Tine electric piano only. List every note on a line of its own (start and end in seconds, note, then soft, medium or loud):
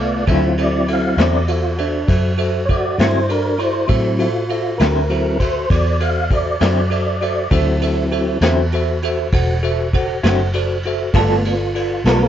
0.00 0.19 F4 medium
0.00 0.20 A4 soft
0.00 0.20 B4 soft
0.00 0.20 E5 medium
0.27 0.50 F#4 medium
0.27 0.50 A4 medium
0.27 0.50 C5 medium
0.27 0.51 E5 medium
0.58 0.81 F#4 medium
0.58 0.81 A4 soft
0.58 0.81 C5 soft
0.58 0.81 E5 medium
0.88 1.11 F#4 medium
0.88 1.11 A4 medium
0.88 1.11 C5 soft
0.88 1.11 E5 medium
1.18 1.41 F#4 medium
1.18 1.41 A4 soft
1.18 1.42 C5 soft
1.18 1.41 D5 medium
1.48 1.71 F#4 medium
1.48 1.72 A4 medium
1.48 1.72 C5 soft
1.48 1.72 E5 medium
1.79 2.01 F#4 medium
1.79 2.01 A4 medium
1.79 2.02 C5 medium
1.79 2.02 E5 medium
2.08 2.31 F#4 medium
2.08 2.31 A4 medium
2.08 2.31 C5 medium
2.08 2.32 E5 medium
2.38 2.61 F#4 medium
2.38 2.62 A4 medium
2.38 2.62 C5 medium
2.38 2.62 E5 medium
2.69 2.92 F#4 medium
2.69 2.92 A4 medium
2.69 2.92 C5 soft
2.69 2.93 E5 medium
2.98 3.21 F#4 soft
2.98 3.22 A4 soft
2.98 3.22 C5 soft
2.98 3.22 E5 medium
3.29 3.52 F#4 medium
3.29 3.52 A4 soft
3.29 3.52 C5 medium
3.29 3.53 D5 medium
3.59 3.82 F#4 medium
3.59 3.82 A4 soft
3.59 3.82 C5 soft
3.59 3.83 D5 medium
3.88 4.12 F#4 medium
3.88 4.12 A4 medium
3.88 4.12 C5 medium
3.88 4.12 E5 medium
4.19 4.42 F#4 medium
4.19 4.43 A4 soft
4.19 4.43 C5 medium
4.19 4.43 E5 medium
4.50 4.73 F#4 medium
4.50 4.73 A4 medium
4.50 4.73 C5 soft
4.50 4.73 E5 medium
4.80 5.03 F#4 medium
4.80 5.03 A4 soft
4.80 5.03 C5 soft
4.80 5.03 E5 medium
5.10 5.33 F#4 medium
5.10 5.33 A4 medium
5.10 5.34 C5 soft
5.10 5.34 E5 medium
5.41 5.64 F#4 medium
5.41 5.64 A4 soft
5.41 5.64 C5 medium
5.41 5.64 E5 medium
5.72 5.94 F#4 medium
5.72 5.94 A4 medium
5.72 5.95 C5 medium
5.72 5.94 D5 medium
6.00 6.24 F#4 medium
6.00 6.24 A4 soft
6.00 6.24 C5 medium
6.00 6.24 E5 medium
6.31 6.54 F#4 medium
6.31 6.54 A4 soft
6.31 6.55 C5 soft
6.31 6.55 E5 medium
6.61 6.84 F#4 medium
6.61 6.84 A4 medium
6.61 6.84 C5 soft
6.61 6.85 E5 medium
6.90 7.14 F#4 medium
6.90 7.14 A4 soft
6.90 7.14 C5 soft
6.90 7.15 E5 medium
7.22 7.44 F#4 medium
7.22 7.45 A4 medium
7.22 7.45 C5 medium
7.22 7.45 E5 medium
7.51 7.74 F#4 medium
7.51 7.75 A4 medium
7.51 7.75 C5 medium
7.51 7.75 E5 medium
7.82 8.05 F#4 medium
7.82 8.05 A4 medium
7.82 8.06 C5 medium
7.82 8.06 E5 medium
8.12 8.35 F#4 medium
8.12 8.35 A4 medium
8.12 8.35 C5 medium
8.12 8.36 E5 medium
8.42 8.65 F#4 medium
8.42 8.65 A4 medium
8.42 8.66 C5 medium
8.42 8.66 E5 medium
8.73 8.96 F#4 medium
8.73 8.96 A4 medium
8.73 8.96 C5 medium
8.73 8.97 E5 medium
9.03 9.26 F#4 medium
9.03 9.26 A4 medium
9.03 9.26 C5 medium
9.03 9.27 E5 medium
9.33 9.56 F#4 medium
9.33 9.56 A4 medium
9.33 9.56 C5 medium
9.33 9.57 F#5 medium
9.63 9.86 F#4 medium
9.63 9.86 A4 medium
9.63 9.86 C5 medium
9.63 9.87 E5 medium
9.94 10.16 F#4 medium
9.94 10.17 A4 medium
9.94 10.17 C5 medium
9.94 10.17 F#5 medium
10.24 10.47 F#4 medium
10.24 10.47 A4 medium
10.24 10.47 C5 medium
10.24 10.47 F#5 medium
10.54 10.77 F#4 medium
10.54 10.77 A4 medium
10.54 10.77 C5 medium
10.54 10.77 D5 medium
10.85 11.07 F#4 medium
10.85 11.08 A4 medium
10.85 11.08 C5 medium
10.85 11.08 E5 medium
11.15 11.37 F4 medium
11.15 11.38 A4 medium
11.15 11.38 B4 medium
11.15 11.38 D5 medium
11.46 11.68 F4 medium
11.46 11.68 A4 medium
11.46 11.68 B4 medium
11.46 11.68 D5 medium
11.75 11.97 F4 medium
11.75 11.97 A4 medium
11.75 11.98 B4 medium
11.75 11.98 D5 medium
12.06 12.28 F4 medium
12.06 12.28 A4 medium
12.06 12.28 B4 medium
12.06 12.28 D5 medium